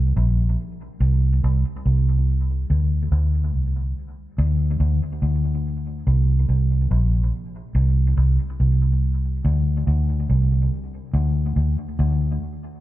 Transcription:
Already playing: C2
0.17 A#1
1.00 C2
1.44 C2
1.86 C2
2.70 D2
3.12 D2
3.54 C2
4.38 D2
4.80 D2
5.22 D2
6.07 C2
6.49 C2
6.91 A#1
7.75 C2
8.17 C2
8.60 C2
9.45 D2
9.87 D2
10.30 C2
11.14 D2
11.56 D2
11.99 D2

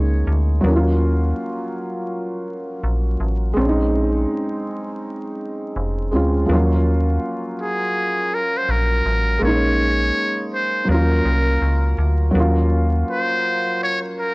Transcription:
Already playing: C#2 G#3 A#3 C#4 D#4
0.27 D2
0.61 D#2 F#3 A#3
0.67 C#4 E4
0.76 F4
2.84 A#1
3.20 A1
3.53 A#1 G#3 C4
3.59 C#4 D4
3.69 D#4
5.76 F1
6.11 D2 G#3 C4 C#4
6.16 F4
6.46 D#2 F3 A#3
6.51 F#3 C#4 F4
7.62 G#4
8.34 A#4
8.57 C5
8.69 A#1 A#4
9.05 A1
9.39 A#1 G#3 A#3
9.44 C#4 D#4 C#5
10.54 C5
10.85 D#2 F#3 A#3
10.91 C#4 F4 A#4
11.25 C2
11.62 C#2
11.98 D2
12.31 D#2 F#3 A#3
12.37 C#4 F4
13.11 C5
13.84 C#5
14.20 A#4

